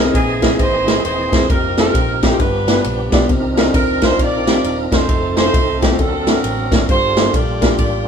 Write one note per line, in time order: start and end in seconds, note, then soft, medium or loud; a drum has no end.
0.00 0.39 C3 medium
0.00 1.46 E3 medium
0.00 1.46 A#3 medium
0.00 1.46 C4 medium
0.00 1.46 G#4 medium
0.00 1.46 D#5 medium
0.05 0.17 C4 medium
0.05 0.17 D#4 medium
0.05 0.17 E4 medium
0.05 0.17 G#4 medium
0.05 0.17 A#4 medium
0.14 0.53 A#1 loud
0.14 0.59 D#4 medium
0.14 0.59 E4 medium
0.14 0.56 G#4 loud
0.14 kick loud
0.14 ride medium
0.42 0.47 C4 medium
0.42 0.47 D#4 medium
0.42 0.47 E4 medium
0.42 0.47 G#4 medium
0.42 0.47 A#4 loud
0.42 kick medium
0.42 snare loud
0.42 ride medium
0.50 0.62 C4 medium
0.50 0.62 D#4 medium
0.50 0.62 E4 medium
0.50 0.62 G#4 medium
0.50 0.62 C5 medium
0.59 0.98 G#1 loud
0.59 1.05 D#4 loud
0.59 1.05 E4 medium
0.59 1.04 C5 loud
0.59 kick medium
0.59 ride medium
0.87 0.97 C4 medium
0.87 0.97 D#4 medium
0.87 0.97 E4 medium
0.87 0.98 G#4 medium
0.87 0.98 C5 medium
0.87 snare loud
0.87 ride medium
1.04 1.28 D#1 loud
1.04 1.47 D#4 medium
1.04 1.47 E4 medium
1.04 1.47 C5 loud
1.04 ride medium
1.32 1.47 E1 loud
1.32 1.42 C4 medium
1.32 1.42 D#4 medium
1.32 1.43 E4 medium
1.32 1.43 G#4 medium
1.32 1.43 C5 medium
1.32 kick loud
1.32 snare loud
1.32 ride medium
1.49 1.88 F1 loud
1.49 2.38 F3 medium
1.49 1.56 A3 medium
1.49 2.38 C4 medium
1.49 2.38 D#4 medium
1.49 1.77 D#4 medium
1.49 2.38 G4 medium
1.49 1.78 G4 medium
1.49 1.77 A#4 loud
1.49 kick loud
1.49 ride medium
1.55 2.41 A#3 medium
1.77 1.82 C4 medium
1.77 1.82 D#4 medium
1.77 2.36 D#4 medium
1.77 1.83 F4 medium
1.77 1.83 G4 medium
1.77 2.22 G4 medium
1.77 1.83 A#4 medium
1.77 2.20 A#4 loud
1.77 snare loud
1.77 ride medium
1.86 1.97 C4 medium
1.86 1.97 D#4 medium
1.86 1.97 F4 medium
1.86 1.97 G4 medium
1.86 1.97 A4 medium
1.94 2.33 A#1 medium
1.94 kick loud
1.94 ride medium
2.23 2.28 C4 medium
2.23 2.28 D#4 medium
2.23 2.28 F4 medium
2.23 2.39 G4 medium
2.23 2.28 G4 medium
2.23 2.28 A4 medium
2.23 kick medium
2.23 snare loud
2.23 ride medium
2.31 2.39 C4 medium
2.31 2.39 D#4 medium
2.31 2.39 F4 medium
2.31 2.40 G4 medium
2.31 2.40 C5 medium
2.39 2.78 G1 loud
2.39 3.09 G2 medium
2.39 3.28 F3 medium
2.39 3.27 G3 medium
2.39 2.46 A3 soft
2.39 3.28 D4 medium
2.39 3.26 D4 medium
2.39 3.26 F4 medium
2.39 3.28 G4 medium
2.39 3.13 B4 loud
2.39 kick medium
2.39 ride medium
2.45 3.30 B3 medium
2.68 2.78 B3 medium
2.68 2.78 D4 medium
2.68 2.78 F4 medium
2.68 2.78 G4 medium
2.68 2.78 B4 medium
2.68 snare loud
2.68 ride medium
2.84 3.08 A#1 loud
2.84 ride medium
3.12 3.22 B3 loud
3.12 3.22 D4 medium
3.12 3.23 F4 medium
3.12 3.23 G4 medium
3.12 3.23 D5 loud
3.12 kick loud
3.12 snare loud
3.12 ride medium
3.29 3.98 C3 medium
3.29 5.05 F3 medium
3.29 5.05 C4 medium
3.29 5.06 D4 medium
3.29 5.06 D#4 medium
3.29 5.06 A#4 medium
3.29 kick loud
3.29 ride medium
3.57 3.62 C4 medium
3.57 3.62 D4 medium
3.57 3.63 D#4 medium
3.57 3.63 F4 medium
3.57 3.63 A#4 loud
3.57 snare loud
3.57 ride soft
3.66 3.77 C4 medium
3.66 3.77 D4 medium
3.66 3.77 D#4 medium
3.66 3.77 F4 medium
3.66 3.77 A4 medium
3.74 4.19 D2 medium
3.74 4.01 A#4 loud
3.74 kick loud
3.74 ride medium
4.02 4.07 C4 medium
4.02 4.07 D4 medium
4.02 4.07 D#4 medium
4.02 4.08 F4 medium
4.02 4.08 A#4 medium
4.02 4.20 C5 loud
4.02 kick medium
4.02 snare loud
4.02 ride medium
4.10 4.22 C4 medium
4.10 4.22 D4 medium
4.10 4.22 D#4 medium
4.10 4.22 F4 medium
4.10 4.22 A#4 medium
4.19 4.57 A#1 loud
4.19 5.06 F4 medium
4.19 5.06 A#4 loud
4.19 4.64 D5 loud
4.19 kick medium
4.19 ride medium
4.47 4.57 C4 medium
4.47 4.57 D4 medium
4.47 4.57 D#4 medium
4.47 4.57 F4 medium
4.47 4.57 G4 medium
4.47 snare loud
4.47 ride medium
4.64 4.88 D#1 medium
4.64 4.77 D5 loud
4.64 ride medium
4.92 5.06 E1 loud
4.92 5.02 C4 medium
4.92 5.02 D4 medium
4.92 5.02 D#4 medium
4.92 5.36 D#4 medium
4.92 5.02 F4 medium
4.92 5.36 A4 medium
4.92 5.02 A#4 medium
4.92 5.35 C5 loud
4.92 kick medium
4.92 snare loud
4.92 ride medium
5.08 5.47 F1 loud
5.08 5.97 F3 medium
5.08 5.97 A3 medium
5.08 5.97 C4 medium
5.08 5.97 D#4 medium
5.08 5.97 A4 medium
5.08 kick loud
5.08 ride medium
5.37 5.42 A3 medium
5.37 5.42 C4 medium
5.37 5.42 D#4 medium
5.37 5.95 D#4 medium
5.37 5.42 F4 medium
5.37 5.95 A4 medium
5.37 5.42 A4 medium
5.37 5.79 C5 loud
5.37 snare loud
5.37 ride soft
5.46 5.57 A3 medium
5.46 5.57 C4 medium
5.46 5.57 D#4 medium
5.46 5.57 F4 medium
5.46 5.57 A4 medium
5.54 5.99 C2 loud
5.54 kick loud
5.54 ride medium
5.82 5.87 A3 medium
5.82 5.87 C4 medium
5.82 5.87 D#4 medium
5.82 5.87 F4 medium
5.82 5.99 G4 loud
5.82 5.87 G4 medium
5.82 kick medium
5.82 snare loud
5.82 ride medium
5.90 5.99 A3 medium
5.90 5.99 C4 medium
5.90 5.99 D#4 medium
5.90 5.99 F4 medium
5.90 5.99 A4 medium
5.99 6.37 D2 loud
5.99 6.68 D3 medium
5.99 6.88 F#3 medium
5.99 6.88 A#3 medium
5.99 6.87 C4 medium
5.99 6.85 C4 medium
5.99 6.88 D4 medium
5.99 6.26 F#4 medium
5.99 6.28 A4 loud
5.99 6.88 A#4 medium
5.99 kick medium
5.99 ride medium
6.27 6.37 A#3 medium
6.27 6.37 C4 medium
6.27 6.37 D4 medium
6.27 6.37 F#4 medium
6.27 6.85 F#4 medium
6.27 6.37 A4 medium
6.27 6.89 A#4 loud
6.27 snare loud
6.27 ride medium
6.43 6.82 A1 loud
6.43 ride medium
6.71 6.82 A#3 medium
6.71 6.82 C4 medium
6.71 6.82 D4 medium
6.71 6.82 F#4 medium
6.71 6.82 A#4 medium
6.71 kick loud
6.71 snare loud
6.71 ride medium
6.88 7.27 G1 loud
6.88 7.58 G2 medium
6.88 8.08 G3 medium
6.88 8.08 A#3 medium
6.88 8.08 D4 medium
6.88 8.08 F4 medium
6.88 7.33 F4 medium
6.88 8.08 G4 medium
6.88 7.76 A4 medium
6.88 7.31 C5 loud
6.88 kick loud
6.88 ride medium
7.16 7.22 A#3 medium
7.16 7.22 D4 medium
7.16 7.22 F4 medium
7.16 7.22 G4 medium
7.16 7.22 A4 medium
7.16 snare loud
7.16 ride soft
7.25 7.36 A#3 medium
7.25 7.36 D4 medium
7.25 7.36 F4 medium
7.25 7.37 G4 medium
7.25 7.37 A4 medium
7.33 7.72 A#1 loud
7.33 7.78 F4 medium
7.33 7.78 A#4 medium
7.33 7.77 D5 loud
7.33 kick medium
7.33 ride medium
7.61 7.67 A#3 medium
7.61 7.67 D4 medium
7.61 7.67 F4 medium
7.61 7.67 G4 medium
7.61 7.67 A#4 loud
7.61 kick medium
7.61 snare loud
7.61 ride medium
7.70 7.81 A#3 medium
7.70 7.81 D4 medium
7.70 7.81 F4 medium
7.70 7.82 G4 medium
7.70 7.82 A4 medium
7.78 8.08 A1 loud
7.78 8.08 F4 medium
7.78 8.08 A#4 medium
7.78 8.08 D5 medium
7.78 kick medium
7.78 ride medium